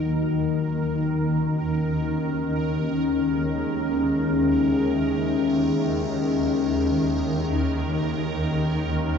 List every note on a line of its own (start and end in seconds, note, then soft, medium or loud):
0.00 9.18 D#2 medium
0.00 9.18 D#3 medium
0.00 1.77 A#3 medium
0.00 0.12 F#4 medium
0.00 9.18 A#4 medium
0.00 0.12 D#5 medium
0.13 9.18 C#4 medium
2.01 9.18 G#4 medium
3.27 7.96 E5 medium
7.97 9.18 A#3 medium